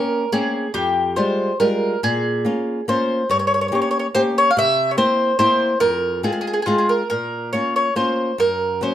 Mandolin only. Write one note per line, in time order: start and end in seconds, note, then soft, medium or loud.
0.00 0.30 A#4 medium
0.32 0.71 G#4 medium
0.74 1.18 G4 medium
1.16 1.59 C5 medium
1.60 2.00 A#4 medium
2.04 2.84 G#4 loud
2.89 3.30 C5 medium
3.31 3.38 C#5 medium
3.39 3.46 C#5 medium
3.47 3.53 C#5 medium
3.54 3.60 C#5 medium
3.61 3.67 C#5 medium
3.68 3.74 C#5 soft
3.75 3.80 C#5 medium
3.82 3.90 C#5 medium
3.91 3.98 C#5 medium
3.99 4.06 C#5 medium
4.15 4.21 C5 loud
4.38 4.50 C#5 loud
4.51 4.57 F5 medium
4.58 4.90 E5 loud
4.91 4.97 C#5 medium
4.98 5.37 C5 loud
5.39 5.78 C5 loud
5.80 6.20 A#4 loud
6.24 6.31 G#4 medium
6.33 6.40 G#4 medium
6.41 6.46 G#4 medium
6.47 6.52 G#4 medium
6.53 6.61 G#4 medium
6.62 6.90 F4 medium
6.62 6.66 G#4 medium
6.68 6.76 G#4 medium
6.78 6.86 G#4 medium
6.89 7.08 A#4 medium
7.10 7.50 A#4 medium
7.53 7.74 C#5 medium
7.76 7.96 C#5 medium
7.96 8.36 C5 medium
8.40 8.82 A#4 loud
8.83 8.94 C5 medium